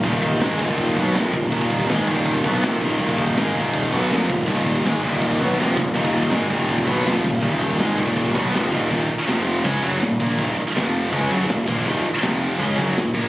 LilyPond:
<<
  \new Staff \with { instrumentName = "Analog synth pad" } { \time 4/4 \key ees \minor \tempo 4 = 162 <ees' bes' f''>1~ | <ees' bes' f''>1~ | <ees' bes' f''>1~ | <ees' bes' f''>1~ |
<ees' bes' f''>1~ | <ees' bes' f''>1 | r1 | r1 |
r1 | }
  \new Staff \with { instrumentName = "Distorted electric guitar" } { \clef bass \time 4/4 \key ees \minor <ees, bes, ees>4 <aes, ees aes>8 <ees, bes, ees>4 <ces ges ces'>8 <f, c f>8 <ees, bes,>8 | <ees, bes, ees>4 <aes, ees aes>8 <ees, bes, ees>4 <ces ges ces'>8 <f, c f>8 <ees, bes, ees>8 | <ees, bes, ees>4 <aes, ees aes>8 <ees, bes, ees>4 <ces ges ces'>8 <f, c f>8 <ees, bes,>8 | <ees, bes, ees>4 <aes, ees aes>8 <ees, bes, ees>4 <ces ges ces'>8 <f, c f>8 <ees, bes,>8 |
<ees, bes, ees>4 <aes, ees aes>8 <ees, bes, ees>4 <ces ges ces'>8 <f, c f>8 <ees, bes,>8 | <ees, bes, ees>4 <aes, ees aes>8 <ees, bes, ees>4 <ces ges ces'>8 <f, c f>8 <ees, bes, ees>8 | <ees, bes, ees>8 r8 <f, c f>4 <des aes des'>8 <ges, des ges>8 <ees, bes,>8 <bes, f bes>8 | <ees, bes, ees>8 r8 <f, c f>4 <des aes des'>8 <ges, des ges>8 <ees, bes,>8 <bes, f bes>8 |
<ees, bes, ees>8 r8 <f, c f>4 <des aes des'>8 <ges, des ges>8 <ees, bes,>8 <bes, f bes>8 | }
  \new Staff \with { instrumentName = "Distorted electric guitar" } { \clef bass \time 4/4 \key ees \minor <ees, bes, ees>4 <aes, ees aes>8 <ees, bes, ees>4 <ces ges ces'>8 <f, c f>8 <ees, bes,>8 | <ees, bes, ees>4 <aes, ees aes>8 <ees, bes, ees>4 <ces ges ces'>8 <f, c f>8 <ees, bes, ees>8 | <ees, bes, ees>4 <aes, ees aes>8 <ees, bes, ees>4 <ces ges ces'>8 <f, c f>8 <ees, bes,>8 | <ees, bes, ees>4 <aes, ees aes>8 <ees, bes, ees>4 <ces ges ces'>8 <f, c f>8 <ees, bes,>8 |
<ees, bes, ees>4 <aes, ees aes>8 <ees, bes, ees>4 <ces ges ces'>8 <f, c f>8 <ees, bes,>8 | <ees, bes, ees>4 <aes, ees aes>8 <ees, bes, ees>4 <ces ges ces'>8 <f, c f>8 <ees, bes, ees>8 | <ees, bes, ees>8 r8 <f, c f>4 <des aes des'>8 <ges, des ges>8 <ees, bes,>8 <bes, f bes>8 | <ees, bes, ees>8 r8 <f, c f>4 <des aes des'>8 <ges, des ges>8 <ees, bes,>8 <bes, f bes>8 |
<ees, bes, ees>8 r8 <f, c f>4 <des aes des'>8 <ges, des ges>8 <ees, bes,>8 <bes, f bes>8 | }
  \new Staff \with { instrumentName = "Distorted electric guitar" } { \clef bass \time 4/4 \key ees \minor <ees, bes, ees>4 <aes, ees aes>8 <ees, bes, ees>4 <ces ges ces'>8 <f, c f>8 <ees, bes,>8 | <ees, bes, ees>4 <aes, ees aes>8 <ees, bes, ees>4 <ces ges ces'>8 <f, c f>8 <ees, bes, ees>8 | <ees, bes, ees>4 <aes, ees aes>8 <ees, bes, ees>4 <ces ges ces'>8 <f, c f>8 <ees, bes,>8 | <ees, bes, ees>4 <aes, ees aes>8 <ees, bes, ees>4 <ces ges ces'>8 <f, c f>8 <ees, bes,>8 |
<ees, bes, ees>4 <aes, ees aes>8 <ees, bes, ees>4 <ces ges ces'>8 <f, c f>8 <ees, bes,>8 | <ees, bes, ees>4 <aes, ees aes>8 <ees, bes, ees>4 <ces ges ces'>8 <f, c f>8 <ees, bes, ees>8 | r1 | r1 |
r1 | }
  \new Staff \with { instrumentName = "Picked electric bass" } { \clef bass \time 4/4 \key ees \minor ees,,4 aes,,8 ees,,4 ces,8 f,,8 ees,,8 | ees,,4 aes,,8 ees,,4 ces,8 f,,8 ees,,8 | ees,,4 aes,,8 ees,,4 ces,8 f,,8 ees,,8 | ees,,4 aes,,8 ees,,4 ces,8 f,,8 ees,,8 |
ees,,4 aes,,8 ees,,4 ces,8 f,,8 ees,,8 | ees,,4 aes,,8 ees,,4 ces,8 f,,8 ees,,8 | ees,,8 r8 f,,4 des,8 ges,,8 ees,,8 bes,,8 | ees,,8 r8 f,,4 des,8 ges,,8 ees,,8 bes,,8 |
ees,,8 r8 f,,4 des,8 ges,,8 ees,,8 bes,,8 | }
  \new DrumStaff \with { instrumentName = "Drums" } \drummode { \time 4/4 <cymc bd>16 bd16 bd16 bd16 <cymc sn>8 bd16 bd16 <cymc bd>16 bd16 bd8 <cymc sn>8 bd8 | <cymc bd>16 bd16 bd16 bd16 <cymc sn>8 bd16 bd16 <cymc bd>16 bd16 bd8 <cymc sn>8 bd8 | <cymc bd>16 bd16 bd16 bd16 <cymc sn>8 bd16 bd16 <cymc bd>16 bd16 bd8 <cymc sn>8 bd8 | <cymc bd>16 bd16 bd16 bd16 <cymc sn>8 bd16 bd16 <cymc bd>16 bd16 bd8 <cymc sn>8 bd8 |
<cymc bd>16 bd16 bd16 bd16 <cymc sn>8 bd16 bd16 <cymc bd>16 bd16 bd8 <cymc sn>8 bd8 | <cymc bd>16 bd16 bd16 bd16 <cymc sn>8 bd16 bd16 <cymc bd>16 bd16 bd8 <cymc sn>8 bd8 | <cymc bd>8 hho8 <hho sn>8 hho8 <hho bd>8 <hho bd>8 <hho sn>8 <hho bd>8 | <hho bd>8 hho8 <hho sn>8 hho8 <hho bd>8 <hho bd>8 <hho sn>8 <hho bd>8 |
<hho bd>8 hho8 <hho sn>8 hho8 <hho bd>8 <hho bd>8 <hho sn>8 <hho bd>8 | }
>>